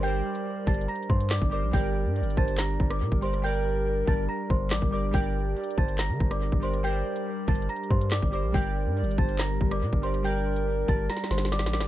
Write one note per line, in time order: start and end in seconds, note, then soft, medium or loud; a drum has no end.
0.00 0.22 G1 loud
0.00 0.02 G3 loud
0.00 1.70 G3 medium
0.00 0.44 G3 loud
0.00 8.50 D4 medium
0.00 0.04 G4 medium
0.00 0.44 G4 medium
0.00 0.05 A#4 medium
0.00 8.50 A#4 loud
0.00 1.76 D5 loud
0.00 0.84 D5 loud
0.00 0.63 G5 loud
0.00 0.64 G6 medium
0.00 closed hi-hat medium
0.05 0.45 A#4 medium
0.05 0.46 C5 loud
0.35 closed hi-hat medium
0.65 0.87 G1 loud
0.65 1.21 G3 medium
0.65 1.21 G4 medium
0.65 1.22 A#4 medium
0.65 0.86 A5 medium
0.65 0.86 A6 medium
0.65 kick loud
0.65 closed hi-hat medium
0.69 1.23 C5 medium
0.74 closed hi-hat medium
0.81 closed hi-hat medium
0.88 1.07 A#5 medium
0.88 1.08 A#6 medium
0.88 closed hi-hat medium
0.95 closed hi-hat medium
1.03 closed hi-hat soft
1.10 1.40 G2 loud
1.10 1.29 C5 medium
1.10 1.28 C6 medium
1.10 kick loud
1.20 closed hi-hat medium
1.31 1.50 D5 medium
1.31 1.50 D6 medium
1.31 snare loud
1.31 clap medium
1.42 1.64 G1 loud
1.42 kick medium
1.50 1.65 G3 medium
1.50 1.65 G4 medium
1.50 1.66 A#4 medium
1.50 1.71 D5 medium
1.50 1.71 D6 medium
1.50 closed hi-hat medium
1.54 1.67 C5 medium
1.63 1.73 A#1 loud
1.72 2.07 G1 loud
1.72 2.27 G3 medium
1.72 11.88 G3 medium
1.72 2.28 G4 medium
1.72 2.29 A#4 medium
1.72 2.33 G5 loud
1.72 2.34 G6 medium
1.72 kick loud
1.72 closed hi-hat medium
1.76 2.29 D5 loud
2.05 2.23 G2 loud
2.16 2.36 D5 medium
2.16 closed hi-hat soft
2.21 2.36 G1 loud
2.21 closed hi-hat medium
2.30 closed hi-hat medium
2.37 2.78 G1 loud
2.37 2.57 C5 medium
2.37 2.56 A5 medium
2.37 2.57 A6 medium
2.37 kick loud
2.48 closed hi-hat medium
2.58 2.89 A#5 medium
2.58 2.89 A#6 medium
2.58 snare loud
2.58 clap medium
2.80 3.03 G1 loud
2.80 kick loud
2.90 3.21 D5 medium
2.90 3.20 D6 medium
2.90 cross-stick loud
2.90 closed hi-hat medium
3.01 3.11 A#2 loud
3.12 4.04 G1 loud
3.12 kick medium
3.21 3.35 G3 medium
3.21 3.36 G4 medium
3.21 3.37 A#4 medium
3.21 3.42 C5 medium
3.21 3.41 C6 medium
3.21 closed hi-hat medium
3.25 3.38 D5 medium
3.33 closed hi-hat medium
3.42 3.84 G3 loud
3.42 3.84 G4 medium
3.42 4.25 A#4 loud
3.42 3.85 A#4 loud
3.42 4.04 G5 loud
3.42 4.04 G6 medium
3.46 3.86 D5 loud
4.05 4.28 G1 loud
4.05 4.61 G3 medium
4.05 4.62 G4 medium
4.05 4.62 A#4 medium
4.05 4.26 A5 medium
4.05 4.27 A6 medium
4.05 kick loud
4.10 4.63 D5 medium
4.29 4.48 A#5 medium
4.29 4.48 A#6 medium
4.50 4.73 G1 loud
4.50 4.69 C5 medium
4.50 4.69 C6 medium
4.50 kick loud
4.71 4.81 A1 loud
4.71 4.91 D5 medium
4.71 4.90 D6 medium
4.71 snare loud
4.71 clap loud
4.82 5.13 G1 loud
4.82 kick medium
4.91 5.05 G3 medium
4.91 5.06 G4 medium
4.91 5.07 A#4 medium
4.91 5.12 D5 medium
4.91 5.11 D6 medium
4.95 5.08 D5 medium
5.11 5.55 G1 loud
5.11 5.67 G3 medium
5.11 5.68 G4 medium
5.11 5.69 A#4 medium
5.11 5.74 G5 loud
5.11 5.74 G6 medium
5.11 kick loud
5.11 closed hi-hat medium
5.16 5.69 D5 loud
5.56 5.77 D5 medium
5.56 closed hi-hat soft
5.64 closed hi-hat medium
5.71 closed hi-hat medium
5.78 6.11 G1 loud
5.78 5.98 C5 medium
5.78 5.97 A5 medium
5.78 5.97 A6 medium
5.78 kick loud
5.88 closed hi-hat medium
5.99 6.29 A#5 medium
5.99 6.29 A#6 medium
5.99 snare loud
5.99 clap medium
6.10 6.20 D3 loud
6.20 6.51 G1 loud
6.20 kick loud
6.31 6.61 D5 medium
6.31 6.61 D6 medium
6.31 cross-stick loud
6.31 closed hi-hat medium
6.52 7.03 G1 loud
6.52 kick medium
6.60 6.75 G3 medium
6.60 6.76 G4 medium
6.60 6.77 A#4 medium
6.60 6.82 C5 medium
6.60 6.82 C6 medium
6.60 closed hi-hat medium
6.65 6.77 D5 medium
6.74 closed hi-hat medium
6.83 7.25 G3 loud
6.83 7.25 G4 medium
6.83 7.26 A#4 medium
6.83 7.65 D5 loud
6.83 7.44 G5 loud
6.83 7.44 G6 medium
6.83 closed hi-hat medium
6.87 7.27 C5 loud
7.16 closed hi-hat medium
7.46 7.68 G1 loud
7.46 8.02 G3 medium
7.46 8.02 G4 medium
7.46 8.03 A#4 medium
7.46 7.67 A5 medium
7.46 7.67 A6 medium
7.46 kick loud
7.46 closed hi-hat medium
7.50 8.04 C5 medium
7.55 closed hi-hat medium
7.62 closed hi-hat medium
7.69 7.88 A#5 medium
7.69 7.88 A#6 medium
7.69 closed hi-hat medium
7.76 closed hi-hat medium
7.83 closed hi-hat soft
7.90 8.21 G2 loud
7.90 8.10 C5 medium
7.90 8.09 C6 medium
7.90 kick loud
8.01 closed hi-hat medium
8.11 8.31 D5 medium
8.11 8.31 D6 medium
8.11 snare loud
8.11 clap loud
8.22 8.45 G1 loud
8.22 kick medium
8.30 8.45 G3 medium
8.30 8.46 G4 medium
8.30 8.47 A#4 medium
8.30 8.52 D5 medium
8.30 8.52 D6 medium
8.30 closed hi-hat medium
8.35 8.48 C5 medium
8.44 8.54 A#1 loud
8.52 8.88 G1 loud
8.52 9.08 G3 medium
8.52 11.88 D4 medium
8.52 9.09 G4 medium
8.52 11.88 A#4 loud
8.52 9.09 A#4 medium
8.52 9.14 G5 loud
8.52 9.15 G6 medium
8.52 kick loud
8.52 closed hi-hat medium
8.57 9.10 D5 loud
8.86 9.04 G2 loud
8.97 9.17 D5 medium
8.97 closed hi-hat soft
9.02 9.17 G1 loud
9.02 closed hi-hat medium
9.11 closed hi-hat medium
9.18 9.59 G1 loud
9.18 9.38 C5 medium
9.18 9.37 A5 medium
9.18 9.37 A6 medium
9.18 kick loud
9.29 closed hi-hat medium
9.39 9.69 A#5 medium
9.39 9.70 A#6 medium
9.39 snare loud
9.39 clap loud
9.61 9.83 G1 loud
9.61 kick loud
9.71 10.02 D5 medium
9.71 10.01 D6 medium
9.71 cross-stick loud
9.71 closed hi-hat medium
9.82 9.92 A#2 loud
9.93 10.85 G1 loud
9.93 kick medium
10.02 10.16 G3 medium
10.02 10.17 G4 medium
10.02 10.18 A#4 medium
10.02 10.23 C5 medium
10.02 10.22 C6 medium
10.02 closed hi-hat medium
10.06 10.18 D5 medium
10.14 closed hi-hat medium
10.23 10.65 G3 medium
10.23 10.65 G4 medium
10.23 11.06 A#4 loud
10.23 10.66 A#4 medium
10.23 10.85 G5 loud
10.23 10.85 G6 medium
10.23 closed hi-hat medium
10.27 10.67 D5 loud
10.56 closed hi-hat medium
10.86 11.09 G1 loud
10.86 11.42 G3 medium
10.86 11.43 G4 medium
10.86 11.43 A#4 medium
10.86 11.07 A5 medium
10.86 11.08 A6 medium
10.86 kick loud
10.86 closed hi-hat medium
10.91 11.44 D5 medium
11.09 11.28 A#5 medium
11.09 11.29 A#6 medium
11.09 snare medium
11.09 closed hi-hat medium
11.17 snare medium
11.24 snare medium
11.31 11.64 G1 loud
11.31 11.50 C5 medium
11.31 11.50 C6 medium
11.31 snare medium
11.38 snare medium
11.38 closed hi-hat medium
11.45 snare medium
11.52 11.71 D5 medium
11.52 11.71 D6 medium
11.52 snare medium
11.59 11.80 A1 loud
11.59 snare medium
11.66 snare loud
11.72 11.86 G3 medium
11.72 11.87 G4 medium
11.72 11.88 A#4 medium
11.72 11.88 D5 medium
11.72 11.88 D6 medium
11.72 snare medium
11.72 closed hi-hat medium
11.76 11.88 G1 loud
11.76 11.88 D5 medium
11.81 snare loud